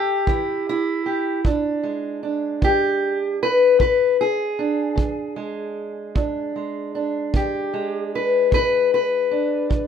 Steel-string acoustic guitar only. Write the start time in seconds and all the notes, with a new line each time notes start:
Already playing: C#4 G4 A4
0.27 E3 E4
0.69 E4
1.06 G4
1.45 E2 D4
1.83 G#3
2.23 D4
2.62 E3 G4
3.43 B4
3.79 E2 B4
4.21 G#4
4.59 D4
4.96 E3
5.36 G#3
6.15 E2 D4
6.56 G#3
6.95 D4
7.33 E3 G4
7.73 G#3
8.15 B4
8.51 E2 B4
8.94 B4
9.31 D4
9.70 E3